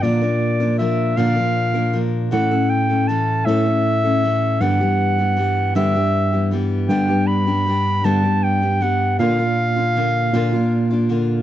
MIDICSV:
0, 0, Header, 1, 4, 480
1, 0, Start_track
1, 0, Tempo, 763359
1, 19, Time_signature, 6, 3, 24, 8
1, 7183, End_track
2, 0, Start_track
2, 0, Title_t, "Clarinet"
2, 0, Program_c, 0, 71
2, 16, Note_on_c, 0, 74, 81
2, 490, Note_off_c, 0, 74, 0
2, 493, Note_on_c, 0, 76, 79
2, 734, Note_on_c, 0, 77, 101
2, 743, Note_off_c, 0, 76, 0
2, 1277, Note_off_c, 0, 77, 0
2, 1458, Note_on_c, 0, 78, 89
2, 1695, Note_on_c, 0, 79, 91
2, 1704, Note_off_c, 0, 78, 0
2, 1933, Note_on_c, 0, 81, 82
2, 1942, Note_off_c, 0, 79, 0
2, 2173, Note_on_c, 0, 76, 106
2, 2182, Note_off_c, 0, 81, 0
2, 2901, Note_on_c, 0, 78, 97
2, 2910, Note_off_c, 0, 76, 0
2, 3618, Note_off_c, 0, 78, 0
2, 3622, Note_on_c, 0, 76, 101
2, 4136, Note_off_c, 0, 76, 0
2, 4331, Note_on_c, 0, 79, 88
2, 4572, Note_on_c, 0, 83, 106
2, 4582, Note_off_c, 0, 79, 0
2, 5061, Note_on_c, 0, 81, 106
2, 5070, Note_off_c, 0, 83, 0
2, 5303, Note_on_c, 0, 79, 89
2, 5312, Note_off_c, 0, 81, 0
2, 5548, Note_on_c, 0, 78, 99
2, 5558, Note_off_c, 0, 79, 0
2, 5777, Note_off_c, 0, 78, 0
2, 5781, Note_on_c, 0, 77, 97
2, 6955, Note_off_c, 0, 77, 0
2, 7183, End_track
3, 0, Start_track
3, 0, Title_t, "Steel-string acoustic guitar"
3, 0, Program_c, 1, 25
3, 19, Note_on_c, 1, 46, 65
3, 19, Note_on_c, 1, 50, 62
3, 23, Note_on_c, 1, 53, 61
3, 24, Note_on_c, 1, 58, 68
3, 28, Note_on_c, 1, 62, 71
3, 28, Note_on_c, 1, 70, 75
3, 127, Note_off_c, 1, 70, 0
3, 134, Note_off_c, 1, 62, 0
3, 135, Note_on_c, 1, 70, 58
3, 139, Note_off_c, 1, 46, 0
3, 139, Note_off_c, 1, 50, 0
3, 139, Note_off_c, 1, 58, 0
3, 141, Note_off_c, 1, 53, 0
3, 142, Note_on_c, 1, 62, 51
3, 146, Note_on_c, 1, 58, 43
3, 151, Note_on_c, 1, 53, 39
3, 369, Note_off_c, 1, 70, 0
3, 376, Note_off_c, 1, 62, 0
3, 376, Note_on_c, 1, 70, 53
3, 381, Note_off_c, 1, 58, 0
3, 383, Note_on_c, 1, 62, 50
3, 385, Note_off_c, 1, 53, 0
3, 388, Note_on_c, 1, 58, 41
3, 395, Note_on_c, 1, 53, 42
3, 490, Note_off_c, 1, 53, 0
3, 495, Note_off_c, 1, 58, 0
3, 498, Note_off_c, 1, 70, 0
3, 498, Note_on_c, 1, 53, 61
3, 501, Note_off_c, 1, 62, 0
3, 503, Note_on_c, 1, 58, 59
3, 508, Note_on_c, 1, 62, 65
3, 513, Note_on_c, 1, 70, 67
3, 736, Note_off_c, 1, 53, 0
3, 738, Note_off_c, 1, 58, 0
3, 738, Note_on_c, 1, 46, 78
3, 740, Note_off_c, 1, 62, 0
3, 744, Note_off_c, 1, 70, 0
3, 744, Note_on_c, 1, 50, 76
3, 744, Note_on_c, 1, 53, 72
3, 745, Note_on_c, 1, 58, 73
3, 748, Note_on_c, 1, 62, 89
3, 752, Note_on_c, 1, 70, 82
3, 850, Note_off_c, 1, 70, 0
3, 857, Note_off_c, 1, 62, 0
3, 857, Note_on_c, 1, 70, 53
3, 859, Note_off_c, 1, 46, 0
3, 861, Note_off_c, 1, 50, 0
3, 862, Note_off_c, 1, 53, 0
3, 862, Note_off_c, 1, 58, 0
3, 864, Note_on_c, 1, 62, 42
3, 872, Note_on_c, 1, 58, 46
3, 877, Note_on_c, 1, 53, 40
3, 1086, Note_off_c, 1, 70, 0
3, 1093, Note_off_c, 1, 62, 0
3, 1093, Note_on_c, 1, 70, 55
3, 1097, Note_off_c, 1, 58, 0
3, 1101, Note_on_c, 1, 62, 52
3, 1103, Note_off_c, 1, 53, 0
3, 1104, Note_on_c, 1, 58, 50
3, 1110, Note_on_c, 1, 53, 46
3, 1208, Note_off_c, 1, 53, 0
3, 1214, Note_off_c, 1, 58, 0
3, 1216, Note_off_c, 1, 70, 0
3, 1216, Note_on_c, 1, 53, 58
3, 1220, Note_off_c, 1, 62, 0
3, 1221, Note_on_c, 1, 58, 54
3, 1229, Note_on_c, 1, 62, 55
3, 1234, Note_on_c, 1, 70, 60
3, 1453, Note_on_c, 1, 45, 63
3, 1456, Note_off_c, 1, 53, 0
3, 1458, Note_off_c, 1, 58, 0
3, 1458, Note_on_c, 1, 52, 74
3, 1460, Note_on_c, 1, 57, 74
3, 1461, Note_off_c, 1, 62, 0
3, 1464, Note_on_c, 1, 61, 61
3, 1466, Note_off_c, 1, 70, 0
3, 1469, Note_on_c, 1, 69, 84
3, 1571, Note_off_c, 1, 69, 0
3, 1576, Note_off_c, 1, 45, 0
3, 1579, Note_off_c, 1, 52, 0
3, 1579, Note_on_c, 1, 69, 59
3, 1580, Note_off_c, 1, 57, 0
3, 1582, Note_off_c, 1, 61, 0
3, 1590, Note_on_c, 1, 61, 51
3, 1597, Note_on_c, 1, 57, 46
3, 1812, Note_off_c, 1, 69, 0
3, 1820, Note_on_c, 1, 69, 53
3, 1824, Note_off_c, 1, 61, 0
3, 1828, Note_off_c, 1, 57, 0
3, 1831, Note_on_c, 1, 61, 46
3, 1837, Note_on_c, 1, 57, 40
3, 1940, Note_off_c, 1, 69, 0
3, 1942, Note_off_c, 1, 57, 0
3, 1943, Note_on_c, 1, 52, 64
3, 1945, Note_off_c, 1, 61, 0
3, 1949, Note_on_c, 1, 57, 66
3, 1953, Note_on_c, 1, 61, 63
3, 1958, Note_on_c, 1, 69, 59
3, 2181, Note_off_c, 1, 52, 0
3, 2183, Note_off_c, 1, 57, 0
3, 2184, Note_on_c, 1, 45, 73
3, 2187, Note_off_c, 1, 61, 0
3, 2189, Note_off_c, 1, 69, 0
3, 2189, Note_on_c, 1, 52, 81
3, 2191, Note_on_c, 1, 57, 81
3, 2194, Note_on_c, 1, 61, 73
3, 2197, Note_on_c, 1, 69, 84
3, 2293, Note_off_c, 1, 69, 0
3, 2300, Note_on_c, 1, 69, 52
3, 2302, Note_off_c, 1, 45, 0
3, 2303, Note_off_c, 1, 61, 0
3, 2305, Note_off_c, 1, 52, 0
3, 2305, Note_off_c, 1, 57, 0
3, 2310, Note_on_c, 1, 61, 44
3, 2315, Note_on_c, 1, 57, 44
3, 2535, Note_off_c, 1, 69, 0
3, 2542, Note_on_c, 1, 69, 50
3, 2543, Note_off_c, 1, 61, 0
3, 2548, Note_off_c, 1, 57, 0
3, 2551, Note_on_c, 1, 61, 49
3, 2558, Note_on_c, 1, 57, 47
3, 2656, Note_on_c, 1, 52, 46
3, 2659, Note_off_c, 1, 57, 0
3, 2661, Note_off_c, 1, 69, 0
3, 2666, Note_off_c, 1, 61, 0
3, 2666, Note_on_c, 1, 57, 57
3, 2672, Note_on_c, 1, 61, 63
3, 2677, Note_on_c, 1, 69, 65
3, 2893, Note_off_c, 1, 52, 0
3, 2896, Note_on_c, 1, 43, 63
3, 2898, Note_on_c, 1, 50, 67
3, 2900, Note_off_c, 1, 57, 0
3, 2901, Note_on_c, 1, 52, 70
3, 2903, Note_on_c, 1, 55, 72
3, 2905, Note_off_c, 1, 61, 0
3, 2905, Note_off_c, 1, 69, 0
3, 2907, Note_on_c, 1, 59, 79
3, 2907, Note_on_c, 1, 67, 78
3, 3011, Note_off_c, 1, 67, 0
3, 3015, Note_off_c, 1, 59, 0
3, 3018, Note_off_c, 1, 43, 0
3, 3019, Note_off_c, 1, 50, 0
3, 3019, Note_on_c, 1, 67, 57
3, 3021, Note_off_c, 1, 52, 0
3, 3022, Note_off_c, 1, 55, 0
3, 3023, Note_on_c, 1, 59, 49
3, 3029, Note_on_c, 1, 55, 47
3, 3035, Note_on_c, 1, 52, 45
3, 3251, Note_off_c, 1, 67, 0
3, 3258, Note_on_c, 1, 67, 47
3, 3259, Note_off_c, 1, 59, 0
3, 3263, Note_off_c, 1, 55, 0
3, 3266, Note_on_c, 1, 59, 47
3, 3267, Note_off_c, 1, 52, 0
3, 3271, Note_on_c, 1, 55, 42
3, 3278, Note_on_c, 1, 52, 41
3, 3366, Note_off_c, 1, 52, 0
3, 3373, Note_off_c, 1, 55, 0
3, 3374, Note_on_c, 1, 52, 62
3, 3379, Note_off_c, 1, 59, 0
3, 3379, Note_off_c, 1, 67, 0
3, 3381, Note_on_c, 1, 55, 61
3, 3386, Note_on_c, 1, 59, 58
3, 3392, Note_on_c, 1, 67, 56
3, 3616, Note_on_c, 1, 43, 77
3, 3617, Note_off_c, 1, 52, 0
3, 3618, Note_off_c, 1, 55, 0
3, 3620, Note_off_c, 1, 67, 0
3, 3621, Note_off_c, 1, 59, 0
3, 3622, Note_on_c, 1, 50, 83
3, 3624, Note_on_c, 1, 52, 69
3, 3625, Note_on_c, 1, 55, 78
3, 3627, Note_on_c, 1, 67, 81
3, 3629, Note_on_c, 1, 59, 67
3, 3732, Note_off_c, 1, 67, 0
3, 3737, Note_off_c, 1, 59, 0
3, 3738, Note_off_c, 1, 43, 0
3, 3739, Note_on_c, 1, 67, 45
3, 3741, Note_off_c, 1, 50, 0
3, 3742, Note_off_c, 1, 52, 0
3, 3743, Note_off_c, 1, 55, 0
3, 3745, Note_on_c, 1, 59, 44
3, 3752, Note_on_c, 1, 55, 45
3, 3756, Note_on_c, 1, 52, 38
3, 3969, Note_off_c, 1, 67, 0
3, 3976, Note_off_c, 1, 59, 0
3, 3976, Note_on_c, 1, 67, 48
3, 3980, Note_off_c, 1, 55, 0
3, 3984, Note_on_c, 1, 59, 44
3, 3985, Note_off_c, 1, 52, 0
3, 3988, Note_on_c, 1, 55, 43
3, 3993, Note_on_c, 1, 52, 45
3, 4086, Note_off_c, 1, 52, 0
3, 4094, Note_off_c, 1, 55, 0
3, 4094, Note_on_c, 1, 52, 46
3, 4099, Note_off_c, 1, 67, 0
3, 4100, Note_off_c, 1, 59, 0
3, 4102, Note_on_c, 1, 55, 56
3, 4108, Note_on_c, 1, 59, 61
3, 4112, Note_on_c, 1, 67, 61
3, 4335, Note_off_c, 1, 55, 0
3, 4335, Note_on_c, 1, 43, 66
3, 4336, Note_off_c, 1, 59, 0
3, 4337, Note_off_c, 1, 52, 0
3, 4338, Note_off_c, 1, 67, 0
3, 4339, Note_on_c, 1, 50, 60
3, 4342, Note_on_c, 1, 55, 69
3, 4343, Note_on_c, 1, 59, 71
3, 4344, Note_on_c, 1, 62, 74
3, 4346, Note_on_c, 1, 67, 72
3, 4447, Note_off_c, 1, 67, 0
3, 4454, Note_off_c, 1, 62, 0
3, 4455, Note_on_c, 1, 67, 55
3, 4458, Note_off_c, 1, 43, 0
3, 4459, Note_off_c, 1, 59, 0
3, 4460, Note_off_c, 1, 50, 0
3, 4462, Note_off_c, 1, 55, 0
3, 4462, Note_on_c, 1, 62, 52
3, 4466, Note_on_c, 1, 59, 50
3, 4471, Note_on_c, 1, 55, 43
3, 4687, Note_off_c, 1, 67, 0
3, 4694, Note_off_c, 1, 62, 0
3, 4695, Note_on_c, 1, 67, 44
3, 4699, Note_off_c, 1, 59, 0
3, 4702, Note_on_c, 1, 62, 50
3, 4706, Note_off_c, 1, 55, 0
3, 4706, Note_on_c, 1, 59, 46
3, 4713, Note_on_c, 1, 55, 40
3, 4810, Note_off_c, 1, 55, 0
3, 4817, Note_off_c, 1, 59, 0
3, 4817, Note_on_c, 1, 55, 55
3, 4818, Note_off_c, 1, 67, 0
3, 4821, Note_off_c, 1, 62, 0
3, 4825, Note_on_c, 1, 59, 51
3, 4830, Note_on_c, 1, 62, 66
3, 4837, Note_on_c, 1, 67, 58
3, 5053, Note_off_c, 1, 55, 0
3, 5055, Note_on_c, 1, 43, 69
3, 5057, Note_off_c, 1, 59, 0
3, 5057, Note_on_c, 1, 50, 74
3, 5059, Note_off_c, 1, 62, 0
3, 5060, Note_off_c, 1, 67, 0
3, 5061, Note_on_c, 1, 55, 71
3, 5065, Note_on_c, 1, 59, 84
3, 5066, Note_on_c, 1, 62, 77
3, 5067, Note_on_c, 1, 67, 77
3, 5167, Note_off_c, 1, 67, 0
3, 5173, Note_off_c, 1, 62, 0
3, 5174, Note_on_c, 1, 67, 50
3, 5178, Note_off_c, 1, 43, 0
3, 5179, Note_off_c, 1, 50, 0
3, 5180, Note_off_c, 1, 59, 0
3, 5180, Note_on_c, 1, 62, 40
3, 5181, Note_off_c, 1, 55, 0
3, 5187, Note_on_c, 1, 59, 45
3, 5192, Note_on_c, 1, 55, 42
3, 5411, Note_off_c, 1, 67, 0
3, 5419, Note_off_c, 1, 62, 0
3, 5419, Note_on_c, 1, 67, 54
3, 5420, Note_off_c, 1, 59, 0
3, 5426, Note_off_c, 1, 55, 0
3, 5426, Note_on_c, 1, 62, 43
3, 5428, Note_on_c, 1, 59, 49
3, 5435, Note_on_c, 1, 55, 45
3, 5529, Note_off_c, 1, 55, 0
3, 5537, Note_off_c, 1, 59, 0
3, 5537, Note_on_c, 1, 55, 54
3, 5540, Note_off_c, 1, 67, 0
3, 5543, Note_off_c, 1, 62, 0
3, 5545, Note_on_c, 1, 59, 53
3, 5550, Note_on_c, 1, 62, 59
3, 5556, Note_on_c, 1, 67, 62
3, 5779, Note_off_c, 1, 55, 0
3, 5780, Note_on_c, 1, 46, 59
3, 5782, Note_off_c, 1, 62, 0
3, 5783, Note_off_c, 1, 59, 0
3, 5785, Note_on_c, 1, 50, 72
3, 5787, Note_on_c, 1, 58, 68
3, 5788, Note_off_c, 1, 67, 0
3, 5789, Note_on_c, 1, 62, 63
3, 5791, Note_on_c, 1, 65, 76
3, 5893, Note_off_c, 1, 65, 0
3, 5900, Note_off_c, 1, 46, 0
3, 5901, Note_on_c, 1, 65, 55
3, 5903, Note_off_c, 1, 50, 0
3, 5903, Note_off_c, 1, 62, 0
3, 5904, Note_off_c, 1, 58, 0
3, 5910, Note_on_c, 1, 62, 50
3, 5919, Note_on_c, 1, 58, 44
3, 6131, Note_off_c, 1, 65, 0
3, 6138, Note_on_c, 1, 65, 54
3, 6139, Note_off_c, 1, 62, 0
3, 6147, Note_on_c, 1, 62, 47
3, 6150, Note_off_c, 1, 58, 0
3, 6157, Note_on_c, 1, 58, 42
3, 6259, Note_off_c, 1, 65, 0
3, 6260, Note_off_c, 1, 58, 0
3, 6263, Note_on_c, 1, 50, 52
3, 6264, Note_off_c, 1, 62, 0
3, 6268, Note_on_c, 1, 58, 57
3, 6273, Note_on_c, 1, 62, 64
3, 6280, Note_on_c, 1, 65, 62
3, 6495, Note_off_c, 1, 50, 0
3, 6499, Note_off_c, 1, 58, 0
3, 6500, Note_off_c, 1, 62, 0
3, 6500, Note_on_c, 1, 46, 84
3, 6503, Note_on_c, 1, 50, 76
3, 6504, Note_off_c, 1, 65, 0
3, 6507, Note_on_c, 1, 58, 84
3, 6507, Note_on_c, 1, 62, 95
3, 6512, Note_on_c, 1, 65, 90
3, 6613, Note_off_c, 1, 65, 0
3, 6620, Note_off_c, 1, 46, 0
3, 6620, Note_off_c, 1, 62, 0
3, 6620, Note_on_c, 1, 65, 56
3, 6621, Note_off_c, 1, 50, 0
3, 6623, Note_off_c, 1, 58, 0
3, 6628, Note_on_c, 1, 62, 54
3, 6638, Note_on_c, 1, 58, 48
3, 6849, Note_off_c, 1, 65, 0
3, 6857, Note_on_c, 1, 65, 58
3, 6860, Note_off_c, 1, 62, 0
3, 6868, Note_on_c, 1, 62, 49
3, 6869, Note_off_c, 1, 58, 0
3, 6876, Note_on_c, 1, 58, 50
3, 6974, Note_off_c, 1, 58, 0
3, 6975, Note_on_c, 1, 50, 62
3, 6978, Note_off_c, 1, 65, 0
3, 6979, Note_off_c, 1, 62, 0
3, 6981, Note_on_c, 1, 58, 66
3, 6986, Note_on_c, 1, 62, 63
3, 6990, Note_on_c, 1, 65, 74
3, 7183, Note_off_c, 1, 50, 0
3, 7183, Note_off_c, 1, 58, 0
3, 7183, Note_off_c, 1, 62, 0
3, 7183, Note_off_c, 1, 65, 0
3, 7183, End_track
4, 0, Start_track
4, 0, Title_t, "Tine electric piano"
4, 0, Program_c, 2, 4
4, 19, Note_on_c, 2, 46, 97
4, 714, Note_off_c, 2, 46, 0
4, 741, Note_on_c, 2, 46, 90
4, 1435, Note_off_c, 2, 46, 0
4, 1462, Note_on_c, 2, 45, 94
4, 2156, Note_off_c, 2, 45, 0
4, 2181, Note_on_c, 2, 45, 107
4, 2876, Note_off_c, 2, 45, 0
4, 2896, Note_on_c, 2, 43, 105
4, 3593, Note_off_c, 2, 43, 0
4, 3619, Note_on_c, 2, 43, 97
4, 4315, Note_off_c, 2, 43, 0
4, 4335, Note_on_c, 2, 43, 103
4, 5033, Note_off_c, 2, 43, 0
4, 5060, Note_on_c, 2, 43, 98
4, 5755, Note_off_c, 2, 43, 0
4, 5781, Note_on_c, 2, 46, 111
4, 6475, Note_off_c, 2, 46, 0
4, 6495, Note_on_c, 2, 46, 86
4, 7183, Note_off_c, 2, 46, 0
4, 7183, End_track
0, 0, End_of_file